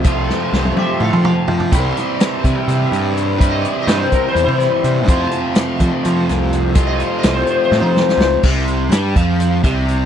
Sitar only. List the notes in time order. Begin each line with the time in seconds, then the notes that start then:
Already playing: C5
0.77 G4 E5
1.02 A4 F5
1.25 F5
3.50 D#5
3.82 D#5
3.96 C5
4.12 A#4
4.28 C5
4.44 E4 C5
6.87 D#5
7.18 D#5
7.33 C5
7.49 C5
7.64 C5
7.80 D#4 C5